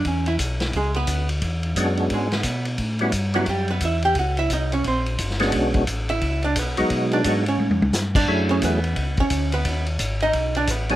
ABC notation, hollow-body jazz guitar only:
X:1
M:4/4
L:1/8
Q:"Swing" 1/4=175
K:Emix
V:1 name="Hollow-body jazz guitar"
C E z2 [G,G] [B,B]2 z | z4 [G,G] [B,B]2 z | z3 [F,F] [=G,=G] [B,B] [Ee] [G=g] | [Ff] [Ee] [^D^d] [Cc] [=C=c]4 |
z3 [Ee]2 [Dd] [B,B]2- | [B,B] [Dd]2 [Cc]2 z2 [Dd]- | [Dd] [Cc] [B,B]3 [Cc]2 [B,B]- | [B,B] z2 [^D^d]2 [=D=d] [B,B]2 |]